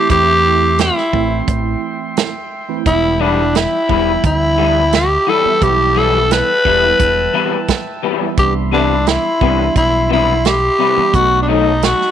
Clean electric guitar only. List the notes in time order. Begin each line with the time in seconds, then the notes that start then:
3.20 E3 G3 B3 E4
3.88 E3 G3 B3 E4
4.58 E3 G3 B3 E4
5.27 E3 G3 B3 E4
5.96 E3 G3 B3 E4
6.65 E3 G3 B3 E4
7.33 E3 G3 B3 E4
8.03 E3 G3 B3 E4
8.72 C3 G3 B3 E4
9.41 C3 G3 B3 E4
10.10 C3 G3 B3 E4
10.79 C3 G3 B3 E4
11.48 B2 F#3 A3 D#4